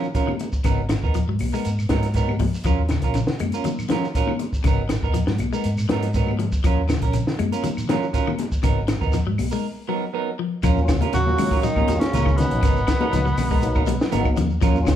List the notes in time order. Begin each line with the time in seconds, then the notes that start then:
Already playing: D#3
0.03 shekere
0.15 F#3 C#4 F4 A#4, kick, closed hi-hat, shekere
0.27 D#3, high conga, claves
0.39 closed hi-hat, high conga, shekere
0.53 kick, shekere
0.64 G#1 C#3 F#3 B3 D#4 A#4, kick, closed hi-hat, claves, shekere
0.89 D#3, snare, closed hi-hat, claves, shekere
1.03 D#2 B3 D#4 A#4, kick, shekere
1.14 F3, closed hi-hat, shekere
1.28 G#2 F#3
1.39 B1, open hi-hat, high conga, claves, shekere
1.53 G#3 B3 D#4 A#4, shekere
1.65 G#2, closed hi-hat, shekere
1.79 claves, shekere
1.89 G#2 F#3 B3 D#4 A#4, muted clean electric guitar stroke, kick, snare, closed hi-hat, high conga
2.03 snare, closed hi-hat, shekere
2.14 F#3 B3 D#4 A#4, kick, closed hi-hat, shekere
2.28 high conga, claves
2.39 F3, kick, open hi-hat, high conga, shekere
2.54 shekere
2.64 D#2 F3 F#3 C#4 F4 A#4, kick, closed hi-hat, claves, shekere
2.89 C#3, snare, closed hi-hat, claves, shekere
3.02 A#1 C#4 F4 A#4, kick, snare, closed hi-hat, shekere
3.14 C#3, snare, closed hi-hat, shekere
3.27 D#3, snare
3.40 F#2 G#3, closed hi-hat, high conga, claves, shekere
3.52 C#4 F4 A#4, closed hi-hat, shekere
3.64 D#3 F#3, closed hi-hat, high conga, shekere
3.79 claves, shekere
3.89 D#3 F3 F#3 C#4 F4 A#4, snare, closed hi-hat, high conga
4.04 snare, shekere
4.15 F#3 C#4 F4 A#4, kick, closed hi-hat, shekere
4.27 D#3, high conga, claves
4.39 closed hi-hat, high conga, shekere
4.53 kick, shekere
4.64 G#1 C#3 F#3 B3 D#4 A#4, kick, closed hi-hat, claves, shekere
4.89 D#3, snare, closed hi-hat, claves, shekere
5.03 D#2 B3 D#4 A#4, kick, shekere
5.14 F3, closed hi-hat, shekere
5.27 G#2 F#3, snare
5.38 B1, closed hi-hat, high conga, claves, shekere
5.53 G#3 B3 D#4 A#4, shekere
5.64 G#2, closed hi-hat, shekere
5.78 claves, shekere
5.89 G#2 F#3 B3 D#4 A#4, snare, closed hi-hat, high conga
6.03 snare, closed hi-hat, shekere
6.14 F#3 B3 D#4 A#4, kick, closed hi-hat, shekere
6.27 high conga, claves
6.39 F3, closed hi-hat, high conga, shekere
6.52 kick, shekere
6.64 D#2 F3 F#3 C#4 F4 A#4, kick, closed hi-hat, claves, shekere
6.89 C#3, snare, closed hi-hat, claves, shekere
7.02 A#1 C#4 A#4, muted clean electric guitar stroke, kick, closed hi-hat, shekere
7.13 C#3, closed hi-hat, shekere
7.27 D#3, snare
7.39 F#2 G#3, closed hi-hat, high conga, claves, shekere
7.52 C#4 F4 A#4, closed hi-hat, shekere
7.64 D#3 F#3, closed hi-hat, high conga, shekere
7.77 claves, shekere
7.89 D#3 F3 F#3 C#4 F4 A#4, snare, closed hi-hat, high conga
8.03 shekere
8.13 F#3 C#4 F4 A#4, kick, closed hi-hat, shekere
8.27 D#3, high conga, claves
8.39 snare, closed hi-hat, high conga, shekere
8.52 kick, shekere
8.63 G#1 C#3 F#3 B3 D#4 A#4, kick, closed hi-hat, claves, shekere
8.88 D#3, snare, closed hi-hat, claves, shekere
9.01 D#2 B3 D#4 A#4, kick, shekere
9.12 F3, snare, closed hi-hat, shekere
9.27 G#2 F#3
9.38 B1, open hi-hat, high conga, claves, shekere
9.51 G#3 D#4 A#4, muted clean electric guitar stroke, shekere
9.88 F#3 B3 D#4 A#4
10.13 F#3 B3 D#4 A#4
10.39 F3
10.63 D#2 F3 F#3 C#4 F4 A#4, kick, closed hi-hat, claves, shekere
10.76 F#3 A#3 C#4 F4, shekere
10.88 C#3, kick, snare, closed hi-hat, claves, shekere
11.01 C#4 F4 A#4, closed hi-hat, high conga, shekere
11.13 D#2 C#3 F#3 F#4, closed hi-hat, shekere
11.26 F#3 A#3 C#4 F4, high conga, shekere
11.38 D#3 G#3, open hi-hat, high conga, low conga, claves, shekere
11.51 C#4 F4 A#4, kick, shekere
11.62 D#3 F#3 D#4, closed hi-hat, shekere
11.76 C#4 F4 A#4, kick, high conga, claves, shekere
11.88 D#2 F#3 A#3 C#4 F4, muted clean electric guitar stroke, closed hi-hat, high conga, shekere
12.00 C#3 C#4, muted fingered electric bass stroke, snare, closed hi-hat, shekere
12.13 C#2 F#3 C#4 F4 A#4, closed hi-hat, high conga, low conga, shekere
12.25 D#3, kick, claves, shekere
12.37 B2 F#3 A#3 B3 C#4 D#4, closed hi-hat, high conga, low conga, shekere
12.51 A#1, closed hi-hat, shekere
12.63 G#1 C#3 F#3 B3 D#4 A#4, kick, closed hi-hat, claves, shekere
12.76 shekere
12.87 D#3, kick, snare, closed hi-hat, claves, shekere
13.00 F#3 A#3 B3 D#4 A#4, high conga, shekere
13.13 C#2 F3, closed hi-hat, shekere
13.26 F#3, shekere
13.38 B1, open hi-hat, high conga, low conga, claves, shekere
13.51 G#3 B3 D#4 A#4, kick, shekere
13.62 F#3 A#3 B3 D#4, closed hi-hat, shekere
13.75 B3 D#4 A#4, kick, claves, shekere
13.87 F#3, closed hi-hat, high conga, shekere
14.00 snare, shekere
14.11 G#1 F#3 A#3 B3 D#4 A#4, closed hi-hat, high conga, low conga, shekere
14.25 kick, claves, shekere
14.37 D#2 F3, closed hi-hat, high conga, low conga, shekere
14.50 shekere
14.61 D#2 F3 F#3 C#4 F4 A#4, kick, closed hi-hat, claves, shekere
14.74 F#3 A#3 C#4 F4, shekere
14.87 C#3, kick, snare, closed hi-hat, claves, shekere